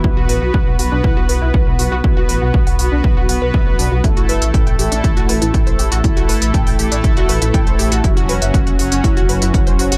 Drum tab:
HH |--o---o---o---o-|--o--oo---o---o-|xxoxxxoxxxoxxxox|xxoxxooxxxoxxxox|
BD |o---o---o---o---|o---o---o---o---|o---o---o---o---|o---o---o---o---|

HH |xxoxxxoxxxoxxxox|
BD |o---o---o---o---|